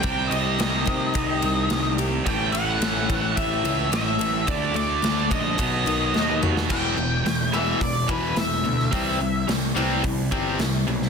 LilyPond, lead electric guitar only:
\new Staff \with { instrumentName = "Lead electric guitar" } { \time 4/4 \key b \phrygian \tempo 4 = 108 g''8 ees''2. r8 | g''8 fis''4. e''4 e''4 | d''8 d''4 dis''2 r8 | \key e \minor g''4. e''8 d''8 b'8 e''4~ |
e''4 r2. | }